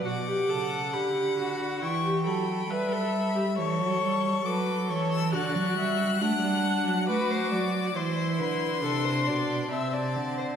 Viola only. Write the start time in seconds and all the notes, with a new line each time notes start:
0.05 F#4
0.27 G4
0.49 A4
0.94 G4
1.38 F#4
1.82 E4
2.04 G4
2.26 A4
2.70 B4
2.92 A4
3.36 G4
3.58 A4
4.46 A4
5.33 F#4
6.21 D4
7.08 F#4
7.95 E4
8.83 D4
9.71 C4